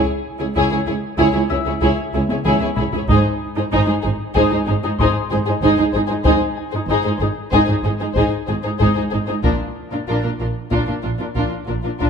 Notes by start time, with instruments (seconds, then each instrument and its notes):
0.39 cello section C#2, viola section E4, violin section G#4 C#5
0.54 double bass section C#2, cello section C#2, viola section E4, violin section G#4 C#5
0.71 cello section C#2, viola section E4, violin section G#4 C#5
0.86 double bass section C#2, cello section C#2, viola section E4, violin section G#4 C#5
1.18 double bass section C#2, cello section C#2, viola section E4, violin section G#4 C#5, taiko
1.34 cello section C#2, viola section E4, violin section G#4 C#5
1.50 double bass section C#2, cello section C#2, viola section E4, violin section G#4 C#5, harp E5 E6
1.65 cello section C#2, viola section E4, violin section G#4 C#5
1.81 double bass section C#2, cello section C#2, viola section E4, violin section G#4 C#5, taiko
2.13 double bass section C#2, cello section C#2, viola section E4, violin section G#4 C#5
2.29 cello section C#2, viola section E4, violin section G#4 C#5, taiko high
2.45 cello section C#2, double bass section C#2, viola section E4, violin section G#4 C#5, taiko mid
2.61 cello section C#2, viola section E4, violin section G#4 C#5, taiko high
2.76 cello section C#2, double bass section C#2, viola section E4, violin section G#4, harp B5, taiko low-mid
2.81 violin section C#5
2.93 cello section C#2, viola section E4, violin section G#4, taiko low
2.97 violin section C#5
3.08 double bass section G#1, cello section G#2, viola section D#4, violin section G#4 C5, taiko
3.56 cello section G#2, viola section D#4, violin section G#4 C5
3.72 double bass section G#1, cello section G#2, viola section D#4, violin section G#4 C5
3.87 cello section G#2, viola section D#4, violin section G#4 C5
4.03 double bass section G#1, cello section G#2, viola section D#4, violin section G#4 C5
4.34 double bass section G#1, cello section G#2, viola section D#4, violin section G#4 C5, taiko
4.51 cello section G#2, viola section D#4, violin section G#4 C5
4.67 double bass section G#1, cello section G#2, viola section D#4, violin section G#4 C5
4.84 cello section G#2, viola section D#4, violin section G#4 C5
4.99 double bass section G#1, cello section G#2, viola section D#4, violin section G#4 C5, harp C6, taiko
5.31 double bass section G#1, cello section G#2, viola section D#4, violin section G#4 C5
5.46 cello section G#2, viola section D#4, violin section G#4 C5
5.62 double bass section G#1, cello section G#2, viola section D#4, violin section G#4 C5, taiko
5.77 cello section G#2, viola section D#4, violin section G#4 C5
5.92 double bass section G#1, cello section G#2, viola section D#4, violin section G#4 C5
6.07 cello section G#2, viola section D#4, violin section G#4 C5
6.24 double bass section G#1, cello section G#2, viola section D#4, violin section G#4 C5, taiko
6.57 harp G#5
6.71 cello section G#2, viola section D#4, violin section G#4 C5
6.88 double bass section G#1, cello section G#2, viola section D#4, violin section G#4 C5
7.04 cello section G#2, viola section D#4, violin section G#4 C5
7.18 double bass section G#1, cello section G#2, violin section G#4 C5
7.22 viola section D#4
7.50 double bass section G#1, cello section G#2, viola section D#4, violin section G#4 C5, taiko
7.66 cello section G#2, viola section D#4, violin section G#4 C5
7.83 double bass section G#1, cello section G#2, viola section D#4, violin section G#4 C5
7.98 cello section G#2, viola section D#4, violin section G#4 C5
8.13 double bass section G#1, cello section G#2, viola section D#4, violin section G#4 C5, taiko
8.46 double bass section G#1, cello section G#2, viola section D#4, violin section G#4 C5
8.62 cello section G#2, viola section D#4, violin section G#4 C5
8.78 double bass section G#1, cello section G#2, viola section D#4, violin section G#4 C5, taiko
8.94 cello section G#2, viola section D#4, violin section G#4 C5
9.11 double bass section G#1, cello section G#2, viola section D#4, violin section G#4 C5
9.27 cello section G#2, viola section D#4, violin section G#4 C5
9.43 double bass section A#1, cello section A#2, viola section D4, violin section F4 A#4, taiko
9.91 cello section A#2, viola section D4, violin section F4 A#4
10.07 double bass section A#1, cello section A#2, viola section D4, violin section F4 A#4
10.23 cello section A#2, viola section D4, violin section F4 A#4
10.40 double bass section A#1, cello section A#2, viola section D4, violin section F4 A#4
10.71 double bass section A#1, cello section A#2, viola section D4, violin section F4 A#4, taiko
10.87 cello section A#2, viola section D4, violin section F4 A#4
11.02 double bass section A#1, cello section A#2, viola section D4, violin section F4 A#4
11.18 cello section A#2, viola section D4, violin section F4 A#4
11.34 double bass section A#1, cello section A#2, viola section D4, violin section F4 A#4, taiko
11.67 double bass section A#1, cello section A#2, viola section D4, violin section F4 A#4
11.83 cello section A#2, viola section D4, violin section F4 A#4
11.99 double bass section A#1, cello section A#2, viola section D4, violin section F4 A#4, taiko